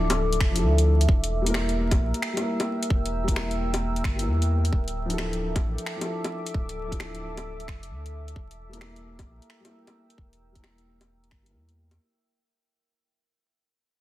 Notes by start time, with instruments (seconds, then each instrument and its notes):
Already playing: sub bass D1, upright piano F3 D4 E4 A4, ambient pad A4 E5 D6
0.10 closed hi-hat, low bongo
0.33 closed hi-hat
0.40 sub bass F1, finger snap, kick
0.51 upright piano F3 D4
0.56 upright piano E4 A4, closed hi-hat
0.62 sub bass D2
0.78 closed hi-hat
1.01 closed hi-hat
1.08 sub bass E1, ambient pad A#4 G5 E6, kick
1.24 closed hi-hat
1.42 upright piano G3 A#3
1.46 upright piano E4 A#4, closed hi-hat
1.54 finger snap, low bongo
1.69 closed hi-hat
1.91 kick, closed hi-hat, low bongo
1.99 sub bass A#1
2.14 closed hi-hat
2.22 finger snap
2.33 upright piano G3 A#3
2.37 upright piano E4, closed hi-hat, low bongo
2.41 upright piano A#4
2.60 closed hi-hat, low bongo
2.83 closed hi-hat
2.90 sub bass E1, kick
3.06 closed hi-hat
3.24 upright piano G3 A#3
3.28 upright piano E4 A#4, kick, closed hi-hat
3.36 finger snap, low bongo
3.51 closed hi-hat
3.74 closed hi-hat, low bongo
3.96 closed hi-hat
4.04 sub bass G1, finger snap, kick
4.15 upright piano G3 A#3
4.19 upright piano E4 A#4, closed hi-hat
4.26 sub bass E2
4.42 closed hi-hat
4.65 closed hi-hat
4.72 sub bass D1, ambient pad A4 E5 D6, kick
4.88 closed hi-hat
5.06 upright piano F3 D4
5.10 upright piano E4 A4, closed hi-hat
5.18 finger snap, low bongo
5.33 closed hi-hat
5.56 kick, closed hi-hat, low bongo
5.63 sub bass A1
5.78 closed hi-hat
5.86 finger snap
5.96 upright piano F3 D4
6.01 upright piano E4 A4, closed hi-hat, low bongo
6.24 closed hi-hat, low bongo
6.46 closed hi-hat
6.54 sub bass D1, kick
6.69 closed hi-hat
6.88 upright piano F3 D4
6.92 upright piano E4 A4, kick, closed hi-hat
7.00 finger snap, low bongo
7.15 closed hi-hat
7.37 closed hi-hat, low bongo
7.60 closed hi-hat
7.68 sub bass F1, finger snap, kick
7.83 closed hi-hat
7.90 sub bass D2
8.06 closed hi-hat
8.28 closed hi-hat
8.35 sub bass E1, ambient pad A#4 G5 E6, kick
8.51 closed hi-hat
8.69 upright piano G3 A#3
8.73 upright piano E4 A#4, closed hi-hat
8.81 finger snap, low bongo
8.96 closed hi-hat
9.19 kick, closed hi-hat, low bongo
9.26 sub bass A#1
9.42 closed hi-hat
9.50 finger snap
9.60 upright piano G3 A#3
9.65 upright piano E4 A#4, closed hi-hat, low bongo
9.87 closed hi-hat, low bongo
10.10 closed hi-hat
10.18 sub bass E1, kick
10.33 closed hi-hat
10.52 upright piano G3 A#3, kick, closed hi-hat
10.57 upright piano E4 A#4
10.64 finger snap, low bongo
10.78 closed hi-hat
11.01 closed hi-hat, low bongo
11.24 closed hi-hat
11.31 sub bass G1, finger snap, kick
11.43 upright piano G3 A#3, closed hi-hat
11.48 upright piano E4 A#4
11.54 sub bass E2
11.69 closed hi-hat
11.91 closed hi-hat, low bongo